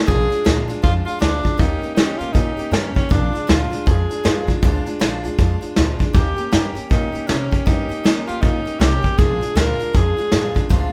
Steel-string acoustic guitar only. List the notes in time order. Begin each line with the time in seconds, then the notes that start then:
0.06 A#2 F3 G#3 D4 F4
0.30 G#3 D4 F4
0.44 A#2 F3 G#3 D4 F4
0.68 G#3 D4 F4
0.82 F3 G#3 D4 F4
1.05 G#3 D4 F4
1.19 A#2 F3 G#3 D4 F4
1.43 G#3 D4 F4
1.57 D#3 A#3 C#4 G4
1.82 A#3 C#4 G4
1.96 D#3 A#3 C#4 G4
2.19 A#3 C#4 G4
2.33 D#3 A#3 C#4 G4
2.57 A#3 C#4 G4
2.71 D#3 A#3 C#4 G4
2.95 A#3 C#4 G4
3.09 A#2 F3 G#3 D4 F4
3.33 G#3 D4 F4
3.47 A#2 F3 G#3 D4 F4
3.70 G#3 D4 F4
3.86 F3 G#3 D4 F4
4.10 G#3 D4 F4
4.24 A#2 F3 G#3 D4 F4
4.47 G#3 D4 F4
4.62 A#2 F3 G#3 D4 F4
4.86 G#3 D4 F4
5.00 A#2 F3 G#3 D4 F4
5.24 G#3 D4 F4
5.38 F3 G#3 D4 F4
5.61 G#3 D4 F4
5.76 A#2 F3 G#3 D4 F4
5.99 G#3 D4 F4
6.13 D#3 A#3 C#4 G4
6.37 A#3 C#4 G4
6.52 D#3 A#3 C#4 G4
6.75 A#3 C#4 G4
6.90 D#3 A#3 C#4 G4
7.12 A#3 C#4 G4
7.27 D#3 A#3 C#4 G4
7.51 A#3 C#4 G4
7.66 D#3 A#3 C#4 G4
7.89 A#3 C#4 G4
8.04 D#3 A#3 C#4 G4
8.27 A#3 C#4 G4
8.42 D#3 A#3 C#4 G4
8.65 A#3 C#4 G4
8.80 D#3 A#3 C#4 G4
9.03 A#3 C#4 G4
9.18 A#2 F3 G#3 D4 F4
9.41 G#3 D4 F4
9.55 A#2 F3 G#3 D4 F4
9.79 G#3 D4 F4
9.93 F3 G#3 D4 F4
10.17 G#3 D4 F4
10.31 A#2 F3 G#3 D4 F4
10.55 G#3 D4 F4
10.69 A#2 F3 G#3 D4 F4